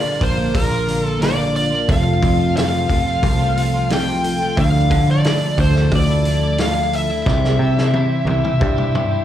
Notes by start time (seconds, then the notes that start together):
Already playing: A#2 D3 F3 A#3 D4 F4 A#4 D5 F5
0.20 A#1 D3 F3 A#3 D4 F4 A#4 C5, kick, open hi-hat
0.37 A#3 D4 F4
0.54 A#1 F3 A#3 D4 A#4 D5 F5, kick, open hi-hat
0.71 A#3 D4 F4
0.87 D3 A#3 D4 F4, open hi-hat
1.03 A#3 D4 F4 A4
1.19 A#2 D3 F3 A#3 D4 F4 A#4 D5 F5, snare, open hi-hat
1.24 A#4
1.36 A#3 D4 F4
1.55 F3 A#3 D4 A#4 D5, open hi-hat
1.70 A#3 D4 F4
1.88 F1 F2 C3 F3 A3 C4 F4 A4 C5 F5, kick, open hi-hat
2.22 F2 F3 A3 C4 F4, kick, open hi-hat
2.39 F3 A3 C4 F4
2.55 F2 C3 F3 A3 C4 F4 A4 C5 F5, snare, open hi-hat
2.89 F1 F3 A3 C4 F4 A4, kick, open hi-hat
3.06 F3 A3 C4 F4
3.21 C2 F3 C4 F4 A4 C5 F5, kick, open hi-hat
3.39 F3 A3 C4 F4
3.56 F3 A3 C4 F4, open hi-hat
3.74 F3 A3 C4 F4
3.89 F2 C3 F3 A3 C4 F4 A4 C5 F5, snare, open hi-hat
3.93 G5
4.07 F3 A3 C4 F4
4.23 C4 F4 A4, open hi-hat
4.40 F3 A3 C4 F4
4.56 D2 D3 F3 A3 D4 E4 A4 D5 E5 F5, kick, open hi-hat
4.90 D3 F3 A3 D4 E4, kick, open hi-hat
5.07 A3 D4 E4
5.11 D5
5.23 D3 F3 A3 D4 E4 A4 D5 E5, snare, open hi-hat
5.57 D2 F3 A3 D4 E4 A4 C5, kick, open hi-hat
5.75 A3 D4 E4, snare
5.92 D2 F3 D4 E4 A4 D5 E5, kick, open hi-hat
6.09 A3 D4 E4
6.25 F3 A3 D4 E4, open hi-hat
6.43 A3 D4 E4
6.58 D3 F3 A3 D4 E4 A4 D5 E5 F5, snare, open hi-hat
6.75 A3 D4 E4
6.93 D4 E4 A4 E5, open hi-hat
7.10 A3 D4 E4
7.25 C2 C3 E3 G3 C4 E4 G4 C5 E5, kick, snare
7.30 G4
7.45 snare
7.59 C3 E3 G3 E4
7.64 G4
7.77 G3 E4 G4, snare
7.93 C3 E3 G3 E4 G4 C5 E5, high tom
8.25 C2 E3 G3 C4 E4 G4, high tom
8.30 G4
8.44 G3 E4 G4, mid tom
8.60 G2 G3 C4 E4 G4 C5 E5, kick
8.76 G3 E4 G4, mid tom
8.94 E3 G3 E4 G4 E5, mid tom
9.11 G3 E4 G4